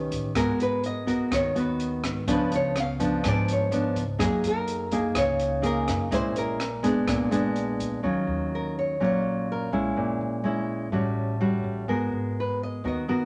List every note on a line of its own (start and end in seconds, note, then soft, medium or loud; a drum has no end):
0.00 0.33 D#3 medium
0.00 0.31 C#4 medium
0.00 0.31 G4 medium
0.00 0.32 B4 medium
0.11 0.34 A1 medium
0.11 kick soft
0.11 closed hi-hat soft
0.35 0.46 G#1 medium
0.35 1.29 G#3 soft
0.35 1.04 B3 medium
0.35 1.04 F#4 medium
0.35 1.04 A#4 medium
0.35 0.61 A#4 medium
0.35 kick medium
0.35 cross-stick medium
0.35 closed hi-hat medium
0.59 1.27 G#1 medium
0.59 0.85 B4 medium
0.59 closed hi-hat soft
0.84 1.34 D#5 medium
0.84 closed hi-hat soft
1.07 1.51 B3 medium
1.07 1.51 F#4 medium
1.07 1.52 A#4 medium
1.07 kick soft
1.07 closed hi-hat soft
1.31 2.00 D#2 medium
1.31 2.25 D#3 medium
1.31 1.57 C#5 medium
1.31 kick medium
1.31 cross-stick medium
1.31 closed hi-hat medium
1.55 2.24 B3 medium
1.55 2.24 F#4 medium
1.55 2.02 B4 medium
1.55 closed hi-hat soft
1.80 closed hi-hat soft
2.03 2.26 G#1 medium
2.03 kick soft
2.03 cross-stick medium
2.03 closed hi-hat soft
2.27 2.39 C#2 medium
2.27 3.21 C#3 medium
2.27 2.75 F3 medium
2.27 2.76 B3 medium
2.27 2.76 D4 medium
2.27 2.54 B4 medium
2.27 kick medium
2.27 closed hi-hat medium
2.51 3.19 C#2 medium
2.51 closed hi-hat soft
2.55 2.78 C#5 medium
2.76 cross-stick medium
2.76 closed hi-hat soft
2.80 3.23 F5 medium
3.00 3.68 F3 medium
3.00 3.68 B3 medium
3.00 3.68 D4 medium
3.00 kick soft
3.00 closed hi-hat soft
3.23 3.92 G#1 medium
3.23 4.17 G#2 medium
3.23 kick medium
3.23 cross-stick medium
3.23 closed hi-hat medium
3.28 3.51 D5 loud
3.48 closed hi-hat soft
3.52 3.95 C#5 medium
3.71 4.02 F3 medium
3.71 4.03 B3 medium
3.71 4.03 D4 medium
3.71 closed hi-hat soft
3.96 4.18 C#2 medium
3.96 kick soft
3.96 closed hi-hat soft
4.19 4.31 F#2 medium
4.19 5.13 F#3 medium
4.19 4.87 A#3 medium
4.19 4.88 D#4 medium
4.19 4.88 G#4 medium
4.19 kick medium
4.19 cross-stick medium
4.19 closed hi-hat medium
4.24 4.46 G#4 medium
4.43 5.12 F#2 medium
4.43 5.01 A#4 loud
4.43 closed hi-hat soft
4.68 closed hi-hat soft
4.91 5.60 A#3 medium
4.91 5.60 D#4 medium
4.91 5.60 G#4 medium
4.91 kick soft
4.91 closed hi-hat soft
5.01 5.18 G#4 loud
5.15 5.84 C#2 medium
5.15 6.09 C#3 medium
5.15 5.62 C#5 loud
5.15 kick medium
5.15 cross-stick medium
5.15 closed hi-hat medium
5.39 closed hi-hat soft
5.62 6.07 A#3 medium
5.62 6.07 D#4 medium
5.62 6.08 G#4 medium
5.62 6.10 A#4 medium
5.62 closed hi-hat soft
5.88 6.10 F#2 medium
5.88 kick soft
5.88 cross-stick medium
5.88 closed hi-hat soft
6.11 6.23 A#1 medium
6.11 7.05 A#2 medium
6.11 6.59 G#3 soft
6.11 6.59 C#4 soft
6.11 6.60 E4 medium
6.11 6.35 C5 medium
6.11 kick medium
6.11 closed hi-hat medium
6.35 7.03 A#1 medium
6.35 6.86 A#4 medium
6.35 closed hi-hat soft
6.60 cross-stick medium
6.60 closed hi-hat soft
6.83 7.28 G#3 medium
6.83 7.28 B3 medium
6.83 7.28 D4 medium
6.83 7.77 G#4 medium
6.83 kick soft
6.83 closed hi-hat soft
7.07 7.76 A#1 medium
7.07 8.01 A#2 medium
7.07 kick medium
7.07 cross-stick medium
7.07 closed hi-hat medium
7.31 8.00 G#3 medium
7.31 8.00 B3 medium
7.31 8.00 D4 medium
7.31 closed hi-hat soft
7.56 closed hi-hat soft
7.79 8.02 A#1 medium
7.79 kick soft
7.79 closed hi-hat soft
8.03 8.26 D#2 medium
8.03 8.97 D#3 soft
8.03 8.96 F#3 medium
8.03 8.96 C#4 medium
8.03 8.96 F4 medium
8.27 8.96 D#2 medium
8.55 8.77 A#4 medium
8.79 9.01 C#5 medium
9.00 9.68 A#1 medium
9.00 9.94 A#2 medium
9.00 9.68 F#3 medium
9.00 9.69 C#4 medium
9.00 9.69 F4 medium
9.04 9.47 C#5 medium
9.52 9.73 A#4 medium
9.72 9.94 B1 medium
9.72 10.40 G#3 medium
9.72 10.41 C#4 medium
9.72 10.41 E4 medium
9.96 10.19 A#1 medium
9.96 10.90 A#2 medium
10.21 10.88 A#1 medium
10.44 10.88 G#3 medium
10.44 10.89 C#4 medium
10.44 10.89 E4 medium
10.92 11.60 A1 medium
10.92 11.86 A2 medium
10.92 11.36 G3 soft
10.92 11.37 C#4 medium
10.92 11.37 F#4 medium
11.41 11.85 G3 medium
11.41 11.84 C#4 soft
11.41 11.85 F#4 medium
11.64 11.86 A1 medium
11.88 12.10 G#1 medium
11.88 12.82 G#3 medium
11.88 12.80 B3 medium
11.88 12.81 F#4 soft
11.88 12.80 A#4 medium
12.12 12.80 G#1 medium
12.40 12.61 B4 medium
12.63 12.85 D#5 medium
12.84 13.25 D#2 medium
12.84 13.25 D#3 soft
12.84 13.05 B3 soft
12.84 13.05 F#4 medium
12.84 13.05 A#4 medium
12.84 13.25 D#5 medium
13.08 13.25 B3 medium
13.08 13.25 F#4 medium
13.08 13.25 A#4 medium